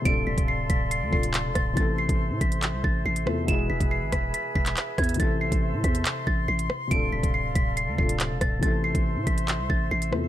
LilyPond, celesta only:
\new Staff \with { instrumentName = "Celesta" } { \time 4/4 \key a \minor \tempo 4 = 140 d''''8 b'''8 c''''8 b'''8 c''''8 c''''4 a'''8 | a'''8 c''''4 b'''4 a'''8 c''''8 r8 | e''''8 b'''8 c''''8 b'''8 b'''8 b'''4 gis'''8 | a'''8 c''''4 b'''4 a'''8 c''''8 r8 |
d''''8 b'''8 c''''8 b'''8 c''''8 c''''4 a'''8 | a'''8 c''''4 b'''4 a'''8 c''''8 r8 | }